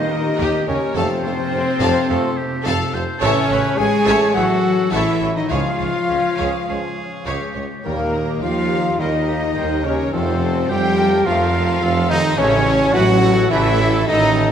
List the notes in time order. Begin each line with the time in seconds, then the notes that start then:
Already playing: D#3 G3 A#3 D#4 G4 C5 D#5
0.11 G4 A#4
0.39 D#2 A#3 G4 A#4 D#5
0.67 D#2 C#3 C#4 G4 A#4 C#5
0.93 F1 F2 C3 F3 A3 C4 A4 C5
0.97 F5 A5
1.23 F1 F2 F4 A4 C5 F5
1.52 F1 F2 F4 A4 C5
1.80 F1 F2 A4 F5 A5
2.08 F1 F2 F3 A3 A4 C5 F5
2.37 G4
2.65 F1 F2 F4 A4 F5 A5
2.93 F1 F2 A4 C5 F5
3.20 A1 A2 C#3 E3 A3 C#4 A4 C#5 E5 A5
3.49 A1 A4 B4 C#5 E5
3.77 A1 G#3 C#4 G#4 A4 C#5 G#5
3.81 A4
4.06 A1 A4 C#5 E5 A5
4.34 A1 E3 F#3 A3 F#4 A4 C#5 E5 F#5
4.64 C#5
4.91 A1 E3 A3 E4 A4 C#5 E5 A5
5.20 A1 A4 C#5 E5
5.36 D#3 D#4 D#5
5.50 C#2 C#3 F3 G#3 F4 G#4 C#5 F5
5.79 C#2 G#4 C#5
6.08 C#2 G#3 C#4 G#4 C#5
6.38 C#2 G#4 C#5 F5
6.67 C#2 F3 G#3 C#4 G#4 C#5
6.97 C#5
7.26 C#2 G#3 G4 G#4 C#5 F5
7.55 C#2 G#4 C#5
7.83 D#2 A#2 D#3 G3 A#3 D#4 A#4 G5
8.13 G4 A#4 D#5 A#5
8.42 D#2 F3 G3 D#4 F4 A#4 F5 G5
8.71 G4 A#4 D#5 A#5
8.98 D#2 D#3 G3 A#3 D#4 A#4 D#5 G5
9.28 G4 A#4 D#5 A#5
9.56 D#2 G3 D#4 A#4 C5 G5
9.83 C#3 C#4 G4 A#4 C#5 D#5 A#5
10.12 F1 F2 C3 F3 A3 C4 F4 A4 C5 F5
10.41 F4 A4 C5 A5
10.68 F1 F2 G3 F4 G4 A4 C5 F5 G5
10.97 F4 A4 A#4 C5 A5
11.25 F1 F2 F3 A3 C4 F4 A4 F5
11.54 F4 A4 C5 A5
11.81 F1 F2 F4 A4 F5
12.09 D#3 D#4 F4 A4 C5 D#5 A5
12.37 A1 A2 C#3 E3 A3 C#4 E4 A4 C#5 E5
12.65 E4 A4 C#5 A5
12.93 A1 F#3 A3 E4 F#4 A4 B4 E5 F#5
13.22 E4 A4 C#5 A5
13.50 A1 C#3 E3 A3 E4 A4 E5
13.79 E4 A4 C#5 A5
14.07 A1 D#3 A3 D#4 E4 A4 D#5 E5
14.37 E4 A4 C#5 A5